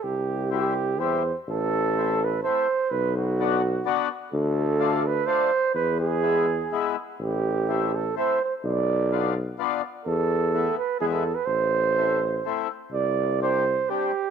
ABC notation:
X:1
M:3/4
L:1/16
Q:1/4=126
K:C
V:1 name="Flugelhorn"
G4 G4 c3 z | [K:Am] A6 B2 c4 | B2 ^F8 z2 | A6 B2 c4 |
B2 ^G8 z2 | G6 A2 c2 c2 | d6 z6 | A6 B2 ^G A2 B |
c8- c2 z2 | d4 c4 G4 |]
V:2 name="Accordion"
z4 [G,CE]2 z2 [G,CE]2 z2 | [K:Am] z4 [A,CE]2 z2 [A,CE]2 z2 | z4 [B,D^F]2 z2 [B,DF]2 z2 | z4 [A,DF]2 z2 [A,DF]2 z2 |
z4 [^G,B,E]2 z2 [G,B,E]2 z2 | z4 [A,CE]2 z2 [A,CE]2 z2 | z4 [B,DF]2 z2 [B,DF]2 z2 | z4 [A,B,E]2 z2 [^G,B,E]2 z2 |
z4 [A,CE]2 z2 [A,CE]2 z2 | z4 [G,CD]2 z2 [G,CD]2 z2 |]
V:3 name="Tuba" clef=bass
C,,8 E,,4 | [K:Am] A,,,12 | B,,,12 | D,,12 |
E,,12 | A,,,12 | B,,,12 | E,,8 E,,4 |
A,,,12 | C,,12 |]